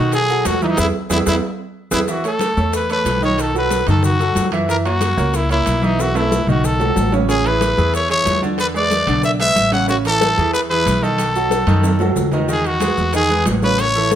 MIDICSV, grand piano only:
0, 0, Header, 1, 2, 480
1, 0, Start_track
1, 0, Key_signature, 4, "major"
1, 0, Tempo, 325203
1, 1147, Time_signature, 4, 2, 24, 8
1, 20891, End_track
2, 0, Start_track
2, 0, Title_t, "Grand piano"
2, 0, Program_c, 0, 0
2, 0, Note_on_c, 0, 51, 80
2, 0, Note_on_c, 0, 63, 81
2, 0, Note_on_c, 0, 75, 77
2, 155, Note_off_c, 0, 51, 0
2, 156, Note_off_c, 0, 63, 0
2, 160, Note_off_c, 0, 75, 0
2, 189, Note_on_c, 0, 54, 70
2, 195, Note_on_c, 0, 66, 64
2, 203, Note_on_c, 0, 69, 64
2, 385, Note_off_c, 0, 54, 0
2, 388, Note_off_c, 0, 66, 0
2, 393, Note_off_c, 0, 69, 0
2, 440, Note_on_c, 0, 54, 72
2, 441, Note_on_c, 0, 66, 71
2, 443, Note_on_c, 0, 69, 72
2, 828, Note_off_c, 0, 54, 0
2, 829, Note_off_c, 0, 66, 0
2, 830, Note_off_c, 0, 69, 0
2, 912, Note_on_c, 0, 52, 85
2, 919, Note_on_c, 0, 64, 82
2, 922, Note_on_c, 0, 76, 77
2, 1107, Note_off_c, 0, 52, 0
2, 1111, Note_off_c, 0, 64, 0
2, 1112, Note_off_c, 0, 76, 0
2, 1138, Note_on_c, 0, 68, 95
2, 1139, Note_on_c, 0, 64, 99
2, 1143, Note_on_c, 0, 71, 93
2, 1295, Note_off_c, 0, 68, 0
2, 1296, Note_off_c, 0, 64, 0
2, 1298, Note_off_c, 0, 71, 0
2, 1619, Note_on_c, 0, 68, 87
2, 1623, Note_on_c, 0, 71, 83
2, 1627, Note_on_c, 0, 64, 87
2, 1777, Note_off_c, 0, 68, 0
2, 1778, Note_off_c, 0, 71, 0
2, 1781, Note_off_c, 0, 64, 0
2, 1862, Note_on_c, 0, 68, 94
2, 1863, Note_on_c, 0, 71, 82
2, 1866, Note_on_c, 0, 64, 89
2, 2018, Note_off_c, 0, 68, 0
2, 2019, Note_off_c, 0, 71, 0
2, 2021, Note_off_c, 0, 64, 0
2, 2821, Note_on_c, 0, 64, 86
2, 2822, Note_on_c, 0, 68, 93
2, 2824, Note_on_c, 0, 71, 96
2, 2978, Note_off_c, 0, 64, 0
2, 2979, Note_off_c, 0, 68, 0
2, 2980, Note_off_c, 0, 71, 0
2, 3069, Note_on_c, 0, 52, 70
2, 3078, Note_on_c, 0, 64, 74
2, 3080, Note_on_c, 0, 76, 79
2, 3267, Note_off_c, 0, 52, 0
2, 3272, Note_off_c, 0, 64, 0
2, 3273, Note_off_c, 0, 76, 0
2, 3317, Note_on_c, 0, 57, 68
2, 3317, Note_on_c, 0, 69, 67
2, 3323, Note_on_c, 0, 73, 71
2, 3708, Note_off_c, 0, 57, 0
2, 3708, Note_off_c, 0, 69, 0
2, 3712, Note_off_c, 0, 73, 0
2, 3793, Note_on_c, 0, 57, 70
2, 3800, Note_on_c, 0, 69, 69
2, 3808, Note_on_c, 0, 73, 66
2, 4186, Note_off_c, 0, 57, 0
2, 4190, Note_off_c, 0, 69, 0
2, 4195, Note_off_c, 0, 73, 0
2, 4282, Note_on_c, 0, 57, 70
2, 4289, Note_on_c, 0, 69, 67
2, 4294, Note_on_c, 0, 73, 63
2, 4672, Note_off_c, 0, 57, 0
2, 4676, Note_off_c, 0, 69, 0
2, 4679, Note_off_c, 0, 73, 0
2, 4756, Note_on_c, 0, 51, 81
2, 4763, Note_on_c, 0, 63, 82
2, 4764, Note_on_c, 0, 75, 85
2, 5148, Note_off_c, 0, 51, 0
2, 5152, Note_off_c, 0, 63, 0
2, 5153, Note_off_c, 0, 75, 0
2, 5241, Note_on_c, 0, 54, 74
2, 5248, Note_on_c, 0, 66, 69
2, 5248, Note_on_c, 0, 69, 76
2, 5632, Note_off_c, 0, 54, 0
2, 5636, Note_off_c, 0, 66, 0
2, 5636, Note_off_c, 0, 69, 0
2, 5722, Note_on_c, 0, 51, 79
2, 5723, Note_on_c, 0, 75, 81
2, 5726, Note_on_c, 0, 63, 78
2, 6113, Note_off_c, 0, 51, 0
2, 6113, Note_off_c, 0, 75, 0
2, 6115, Note_off_c, 0, 63, 0
2, 6200, Note_on_c, 0, 54, 68
2, 6205, Note_on_c, 0, 66, 70
2, 6205, Note_on_c, 0, 69, 68
2, 6591, Note_off_c, 0, 54, 0
2, 6594, Note_off_c, 0, 66, 0
2, 6595, Note_off_c, 0, 69, 0
2, 6677, Note_on_c, 0, 52, 87
2, 6681, Note_on_c, 0, 64, 82
2, 6690, Note_on_c, 0, 76, 85
2, 6873, Note_off_c, 0, 52, 0
2, 6875, Note_off_c, 0, 64, 0
2, 6880, Note_off_c, 0, 76, 0
2, 6905, Note_on_c, 0, 52, 73
2, 6912, Note_on_c, 0, 64, 74
2, 6916, Note_on_c, 0, 76, 78
2, 7106, Note_off_c, 0, 52, 0
2, 7110, Note_off_c, 0, 64, 0
2, 7113, Note_off_c, 0, 76, 0
2, 7163, Note_on_c, 0, 58, 75
2, 7167, Note_on_c, 0, 70, 75
2, 7167, Note_on_c, 0, 73, 74
2, 7554, Note_off_c, 0, 58, 0
2, 7556, Note_off_c, 0, 70, 0
2, 7556, Note_off_c, 0, 73, 0
2, 7634, Note_on_c, 0, 58, 76
2, 7640, Note_on_c, 0, 70, 68
2, 7645, Note_on_c, 0, 73, 74
2, 8029, Note_off_c, 0, 58, 0
2, 8032, Note_off_c, 0, 70, 0
2, 8035, Note_off_c, 0, 73, 0
2, 8114, Note_on_c, 0, 58, 72
2, 8124, Note_on_c, 0, 70, 69
2, 8127, Note_on_c, 0, 73, 72
2, 8509, Note_off_c, 0, 58, 0
2, 8515, Note_off_c, 0, 70, 0
2, 8517, Note_off_c, 0, 73, 0
2, 8590, Note_on_c, 0, 52, 78
2, 8595, Note_on_c, 0, 64, 92
2, 8604, Note_on_c, 0, 76, 83
2, 8986, Note_off_c, 0, 52, 0
2, 8990, Note_off_c, 0, 64, 0
2, 8994, Note_off_c, 0, 76, 0
2, 9081, Note_on_c, 0, 57, 77
2, 9083, Note_on_c, 0, 69, 68
2, 9089, Note_on_c, 0, 71, 69
2, 9473, Note_off_c, 0, 57, 0
2, 9474, Note_off_c, 0, 69, 0
2, 9478, Note_off_c, 0, 71, 0
2, 9570, Note_on_c, 0, 51, 77
2, 9574, Note_on_c, 0, 63, 78
2, 9580, Note_on_c, 0, 75, 79
2, 9958, Note_off_c, 0, 51, 0
2, 9961, Note_off_c, 0, 63, 0
2, 9964, Note_off_c, 0, 75, 0
2, 10046, Note_on_c, 0, 54, 69
2, 10051, Note_on_c, 0, 69, 75
2, 10056, Note_on_c, 0, 66, 64
2, 10436, Note_off_c, 0, 54, 0
2, 10439, Note_off_c, 0, 69, 0
2, 10442, Note_off_c, 0, 66, 0
2, 10518, Note_on_c, 0, 49, 85
2, 10525, Note_on_c, 0, 61, 82
2, 10532, Note_on_c, 0, 73, 80
2, 10715, Note_off_c, 0, 49, 0
2, 10719, Note_off_c, 0, 61, 0
2, 10723, Note_off_c, 0, 73, 0
2, 10751, Note_on_c, 0, 49, 78
2, 10753, Note_on_c, 0, 61, 80
2, 10757, Note_on_c, 0, 73, 76
2, 10950, Note_off_c, 0, 49, 0
2, 10951, Note_off_c, 0, 61, 0
2, 10954, Note_off_c, 0, 73, 0
2, 10993, Note_on_c, 0, 52, 67
2, 11000, Note_on_c, 0, 64, 73
2, 11007, Note_on_c, 0, 68, 74
2, 11388, Note_off_c, 0, 52, 0
2, 11392, Note_off_c, 0, 64, 0
2, 11396, Note_off_c, 0, 68, 0
2, 11478, Note_on_c, 0, 52, 71
2, 11482, Note_on_c, 0, 64, 74
2, 11489, Note_on_c, 0, 68, 71
2, 11871, Note_off_c, 0, 52, 0
2, 11873, Note_off_c, 0, 64, 0
2, 11878, Note_off_c, 0, 68, 0
2, 11949, Note_on_c, 0, 52, 69
2, 11958, Note_on_c, 0, 64, 71
2, 11960, Note_on_c, 0, 68, 71
2, 12346, Note_off_c, 0, 52, 0
2, 12351, Note_off_c, 0, 64, 0
2, 12352, Note_off_c, 0, 68, 0
2, 12436, Note_on_c, 0, 50, 89
2, 12439, Note_on_c, 0, 62, 84
2, 12443, Note_on_c, 0, 74, 87
2, 12830, Note_off_c, 0, 50, 0
2, 12832, Note_off_c, 0, 62, 0
2, 12834, Note_off_c, 0, 74, 0
2, 12905, Note_on_c, 0, 68, 74
2, 12908, Note_on_c, 0, 56, 75
2, 12912, Note_on_c, 0, 71, 67
2, 13303, Note_off_c, 0, 68, 0
2, 13305, Note_off_c, 0, 56, 0
2, 13307, Note_off_c, 0, 71, 0
2, 13395, Note_on_c, 0, 50, 84
2, 13402, Note_on_c, 0, 62, 81
2, 13402, Note_on_c, 0, 74, 82
2, 13789, Note_off_c, 0, 50, 0
2, 13793, Note_off_c, 0, 62, 0
2, 13793, Note_off_c, 0, 74, 0
2, 13876, Note_on_c, 0, 56, 74
2, 13877, Note_on_c, 0, 68, 69
2, 13885, Note_on_c, 0, 71, 71
2, 14269, Note_off_c, 0, 56, 0
2, 14270, Note_off_c, 0, 68, 0
2, 14275, Note_off_c, 0, 71, 0
2, 14341, Note_on_c, 0, 49, 88
2, 14344, Note_on_c, 0, 61, 87
2, 14349, Note_on_c, 0, 73, 81
2, 14544, Note_off_c, 0, 49, 0
2, 14545, Note_off_c, 0, 61, 0
2, 14549, Note_off_c, 0, 73, 0
2, 14579, Note_on_c, 0, 49, 78
2, 14588, Note_on_c, 0, 61, 75
2, 14597, Note_on_c, 0, 73, 84
2, 14782, Note_off_c, 0, 49, 0
2, 14787, Note_off_c, 0, 61, 0
2, 14793, Note_off_c, 0, 73, 0
2, 14834, Note_on_c, 0, 52, 68
2, 14836, Note_on_c, 0, 64, 74
2, 14840, Note_on_c, 0, 69, 76
2, 15227, Note_off_c, 0, 52, 0
2, 15229, Note_off_c, 0, 64, 0
2, 15231, Note_off_c, 0, 69, 0
2, 15303, Note_on_c, 0, 52, 76
2, 15315, Note_on_c, 0, 64, 74
2, 15324, Note_on_c, 0, 68, 72
2, 15701, Note_off_c, 0, 52, 0
2, 15708, Note_off_c, 0, 64, 0
2, 15713, Note_off_c, 0, 68, 0
2, 15802, Note_on_c, 0, 52, 73
2, 15804, Note_on_c, 0, 64, 77
2, 15809, Note_on_c, 0, 68, 71
2, 16192, Note_off_c, 0, 52, 0
2, 16193, Note_off_c, 0, 64, 0
2, 16196, Note_off_c, 0, 68, 0
2, 16272, Note_on_c, 0, 51, 87
2, 16278, Note_on_c, 0, 63, 91
2, 16282, Note_on_c, 0, 75, 87
2, 16666, Note_off_c, 0, 51, 0
2, 16669, Note_off_c, 0, 63, 0
2, 16672, Note_off_c, 0, 75, 0
2, 16765, Note_on_c, 0, 54, 78
2, 16768, Note_on_c, 0, 66, 72
2, 16779, Note_on_c, 0, 69, 71
2, 17153, Note_off_c, 0, 54, 0
2, 17155, Note_off_c, 0, 66, 0
2, 17161, Note_off_c, 0, 69, 0
2, 17235, Note_on_c, 0, 51, 88
2, 17237, Note_on_c, 0, 75, 87
2, 17240, Note_on_c, 0, 63, 85
2, 17627, Note_off_c, 0, 51, 0
2, 17628, Note_off_c, 0, 75, 0
2, 17630, Note_off_c, 0, 63, 0
2, 17721, Note_on_c, 0, 54, 74
2, 17725, Note_on_c, 0, 66, 76
2, 17725, Note_on_c, 0, 69, 74
2, 18110, Note_off_c, 0, 54, 0
2, 18112, Note_off_c, 0, 66, 0
2, 18112, Note_off_c, 0, 69, 0
2, 18203, Note_on_c, 0, 51, 86
2, 18204, Note_on_c, 0, 63, 86
2, 18210, Note_on_c, 0, 75, 85
2, 18394, Note_off_c, 0, 51, 0
2, 18395, Note_off_c, 0, 63, 0
2, 18399, Note_off_c, 0, 75, 0
2, 18437, Note_on_c, 0, 51, 84
2, 18439, Note_on_c, 0, 63, 77
2, 18445, Note_on_c, 0, 75, 82
2, 18827, Note_off_c, 0, 51, 0
2, 18828, Note_off_c, 0, 63, 0
2, 18832, Note_off_c, 0, 75, 0
2, 18914, Note_on_c, 0, 56, 72
2, 18919, Note_on_c, 0, 68, 71
2, 18927, Note_on_c, 0, 71, 69
2, 19305, Note_off_c, 0, 56, 0
2, 19308, Note_off_c, 0, 68, 0
2, 19313, Note_off_c, 0, 71, 0
2, 19394, Note_on_c, 0, 51, 76
2, 19398, Note_on_c, 0, 75, 73
2, 19402, Note_on_c, 0, 63, 76
2, 19588, Note_off_c, 0, 51, 0
2, 19591, Note_off_c, 0, 75, 0
2, 19593, Note_off_c, 0, 63, 0
2, 19631, Note_on_c, 0, 56, 77
2, 19635, Note_on_c, 0, 68, 78
2, 19640, Note_on_c, 0, 71, 74
2, 20023, Note_off_c, 0, 56, 0
2, 20025, Note_off_c, 0, 68, 0
2, 20028, Note_off_c, 0, 71, 0
2, 20120, Note_on_c, 0, 49, 85
2, 20125, Note_on_c, 0, 61, 90
2, 20128, Note_on_c, 0, 73, 83
2, 20508, Note_off_c, 0, 49, 0
2, 20511, Note_off_c, 0, 61, 0
2, 20512, Note_off_c, 0, 73, 0
2, 20597, Note_on_c, 0, 64, 76
2, 20598, Note_on_c, 0, 52, 70
2, 20608, Note_on_c, 0, 69, 80
2, 20891, Note_off_c, 0, 52, 0
2, 20891, Note_off_c, 0, 64, 0
2, 20891, Note_off_c, 0, 69, 0
2, 20891, End_track
0, 0, End_of_file